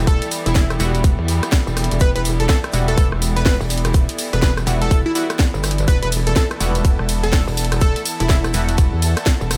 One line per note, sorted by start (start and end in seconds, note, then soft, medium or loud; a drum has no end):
0.00 9.57 E3 medium
0.00 0.78 G3 medium
0.00 5.87 G3 medium
0.00 0.78 B3 medium
0.00 9.57 B3 medium
0.00 0.78 E4 medium
0.00 9.57 E4 medium
0.00 0.78 F#4 medium
0.00 9.57 A4 medium
0.00 9.57 D5 medium
0.07 0.20 E1 loud
0.07 0.28 A4 medium
0.07 kick loud
0.07 closed hi-hat medium
0.07 tambourine soft
0.07 shaker medium
0.22 snare soft
0.22 closed hi-hat medium
0.22 tambourine soft
0.31 open hi-hat loud
0.31 tambourine medium
0.31 shaker medium
0.46 0.78 E1 loud
0.46 0.80 E4 loud
0.46 closed hi-hat medium
0.46 tambourine soft
0.55 kick loud
0.55 snare loud
0.55 tambourine soft
0.55 shaker medium
0.70 cross-stick medium
0.70 snare soft
0.70 closed hi-hat soft
0.70 tambourine soft
0.80 1.02 E1 loud
0.80 2.71 G3 medium
0.80 2.71 B3 medium
0.80 2.71 E4 medium
0.80 2.71 F#4 loud
0.80 open hi-hat loud
0.80 tambourine medium
0.80 shaker medium
0.95 closed hi-hat medium
0.95 tambourine soft
1.04 1.16 E1 medium
1.04 kick loud
1.04 closed hi-hat medium
1.04 tambourine soft
1.04 shaker medium
1.19 1.41 E2 loud
1.28 open hi-hat loud
1.28 tambourine medium
1.28 shaker medium
1.43 cross-stick medium
1.43 snare soft
1.43 closed hi-hat medium
1.43 tambourine soft
1.52 kick loud
1.52 snare loud
1.52 closed hi-hat medium
1.52 tambourine soft
1.52 shaker medium
1.67 1.89 E1 loud
1.67 tambourine soft
1.77 cross-stick medium
1.77 open hi-hat loud
1.77 tambourine medium
1.77 shaker medium
1.84 closed hi-hat medium
1.91 1.99 E1 loud
1.91 closed hi-hat medium
1.91 tambourine soft
2.00 2.13 E1 loud
2.00 2.10 B4 medium
2.00 kick loud
2.00 closed hi-hat medium
2.00 tambourine soft
2.00 shaker medium
2.15 2.48 E1 loud
2.15 2.22 B4 medium
2.15 closed hi-hat medium
2.15 tambourine soft
2.25 open hi-hat loud
2.25 tambourine medium
2.25 shaker medium
2.40 2.46 A4 medium
2.40 closed hi-hat medium
2.40 tambourine soft
2.49 2.59 A4 medium
2.49 kick loud
2.49 snare loud
2.49 tambourine soft
2.49 shaker medium
2.64 cross-stick medium
2.64 snare soft
2.64 closed hi-hat soft
2.72 2.96 E1 loud
2.72 4.65 G3 medium
2.72 4.65 B3 medium
2.72 4.65 E4 medium
2.72 4.65 F#4 medium
2.72 open hi-hat loud
2.72 tambourine medium
2.72 shaker medium
2.88 3.07 A4 medium
2.88 closed hi-hat medium
2.88 tambourine soft
2.98 3.10 E1 loud
2.98 kick loud
2.98 closed hi-hat medium
2.98 tambourine soft
2.98 shaker medium
3.12 3.58 E1 medium
3.12 cross-stick medium
3.22 open hi-hat loud
3.22 tambourine medium
3.22 shaker medium
3.36 3.42 B4 medium
3.36 snare medium
3.36 closed hi-hat medium
3.36 tambourine soft
3.46 3.55 B4 medium
3.46 kick loud
3.46 snare loud
3.46 closed hi-hat medium
3.46 open hi-hat medium
3.46 tambourine soft
3.61 3.93 E1 loud
3.61 tambourine soft
3.70 open hi-hat loud
3.70 tambourine medium
3.70 shaker medium
3.78 closed hi-hat medium
3.85 cross-stick medium
3.85 closed hi-hat medium
3.85 tambourine soft
3.94 4.07 E1 medium
3.94 kick loud
3.94 closed hi-hat medium
3.94 tambourine soft
3.94 shaker medium
4.08 snare soft
4.08 closed hi-hat medium
4.08 tambourine soft
4.18 open hi-hat loud
4.18 tambourine medium
4.18 shaker medium
4.33 4.65 E1 loud
4.33 4.39 B4 medium
4.33 closed hi-hat medium
4.33 tambourine soft
4.42 4.52 B4 medium
4.42 kick loud
4.42 snare loud
4.42 tambourine soft
4.42 shaker medium
4.57 cross-stick medium
4.57 snare soft
4.57 closed hi-hat soft
4.57 tambourine soft
4.67 4.90 E1 loud
4.67 5.13 G3 medium
4.67 5.13 B3 medium
4.67 5.13 E4 medium
4.67 5.13 F#4 medium
4.67 open hi-hat loud
4.67 tambourine medium
4.67 shaker medium
4.81 5.01 A4 medium
4.81 closed hi-hat soft
4.81 tambourine soft
4.91 5.03 E1 loud
4.91 kick loud
4.91 closed hi-hat medium
4.91 tambourine soft
4.91 shaker loud
5.06 5.12 E4 medium
5.15 5.27 G3 medium
5.15 5.27 B3 medium
5.15 5.25 E4 medium
5.15 5.27 E4 medium
5.15 5.27 F#4 medium
5.15 open hi-hat loud
5.15 tambourine medium
5.15 shaker medium
5.30 cross-stick medium
5.30 snare soft
5.30 closed hi-hat medium
5.30 tambourine soft
5.39 kick loud
5.39 snare loud
5.39 closed hi-hat medium
5.39 tambourine soft
5.39 shaker medium
5.54 5.86 G1 loud
5.54 tambourine soft
5.63 cross-stick medium
5.63 open hi-hat loud
5.63 tambourine medium
5.63 shaker medium
5.71 closed hi-hat medium
5.78 closed hi-hat medium
5.78 tambourine soft
5.88 6.00 E1 loud
5.88 9.57 A4 medium
5.88 5.97 B4 medium
5.88 kick loud
5.88 closed hi-hat medium
5.88 ride medium
5.88 tambourine soft
5.88 shaker medium
6.02 6.35 E1 loud
6.02 6.09 B4 medium
6.02 closed hi-hat medium
6.02 tambourine soft
6.12 open hi-hat loud
6.12 ride medium
6.12 tambourine medium
6.12 shaker medium
6.27 6.33 A4 medium
6.27 9.57 F#5 medium
6.27 closed hi-hat medium
6.27 tambourine soft
6.36 6.46 A4 medium
6.36 kick loud
6.36 snare loud
6.36 ride medium
6.36 tambourine soft
6.36 shaker medium
6.51 cross-stick medium
6.51 snare soft
6.51 closed hi-hat soft
6.60 6.83 E1 medium
6.60 8.52 G3 medium
6.60 8.52 B3 medium
6.60 8.52 E4 medium
6.60 8.52 F#4 medium
6.60 open hi-hat loud
6.60 ride medium
6.60 tambourine medium
6.60 shaker medium
6.75 closed hi-hat soft
6.75 tambourine soft
6.85 6.97 E1 medium
6.85 kick loud
6.85 closed hi-hat medium
6.85 ride medium
6.85 tambourine soft
6.85 shaker medium
6.99 7.45 E1 loud
6.99 cross-stick medium
7.09 open hi-hat loud
7.09 ride medium
7.09 tambourine medium
7.09 shaker medium
7.23 7.43 A4 loud
7.23 snare medium
7.23 closed hi-hat soft
7.23 tambourine soft
7.33 kick loud
7.33 snare loud
7.33 closed hi-hat medium
7.33 open hi-hat medium
7.33 ride medium
7.33 tambourine soft
7.48 7.80 E1 loud
7.48 tambourine soft
7.57 open hi-hat loud
7.57 ride medium
7.57 tambourine medium
7.57 shaker medium
7.65 closed hi-hat medium
7.72 cross-stick medium
7.72 closed hi-hat medium
7.72 tambourine soft
7.81 7.94 E1 loud
7.81 8.03 A4 loud
7.81 kick loud
7.81 closed hi-hat medium
7.81 ride medium
7.81 tambourine soft
7.81 shaker medium
7.96 snare soft
7.96 closed hi-hat medium
7.96 tambourine soft
8.05 open hi-hat loud
8.05 ride medium
8.05 tambourine medium
8.05 shaker medium
8.20 8.52 E1 loud
8.20 8.54 E4 loud
8.20 closed hi-hat medium
8.20 tambourine soft
8.29 kick loud
8.29 snare loud
8.29 ride medium
8.29 tambourine soft
8.29 shaker medium
8.44 cross-stick medium
8.44 snare soft
8.44 closed hi-hat soft
8.44 tambourine soft
8.54 8.77 E1 loud
8.54 9.57 G3 medium
8.54 9.57 B3 medium
8.54 9.57 E4 medium
8.54 9.57 F#4 medium
8.54 open hi-hat loud
8.54 ride medium
8.54 tambourine medium
8.54 shaker medium
8.69 closed hi-hat medium
8.69 tambourine soft
8.78 8.91 E1 loud
8.78 kick loud
8.78 closed hi-hat medium
8.78 ride medium
8.78 tambourine medium
8.78 shaker medium
8.93 9.15 E2 loud
9.02 open hi-hat loud
9.02 ride medium
9.02 tambourine medium
9.02 shaker medium
9.17 cross-stick medium
9.17 snare soft
9.17 closed hi-hat medium
9.17 tambourine soft
9.26 kick loud
9.26 snare loud
9.26 closed hi-hat medium
9.26 ride medium
9.26 tambourine soft
9.26 shaker medium
9.41 9.57 E1 loud
9.41 tambourine soft
9.51 cross-stick medium
9.51 open hi-hat loud
9.51 ride medium
9.51 tambourine medium
9.51 shaker medium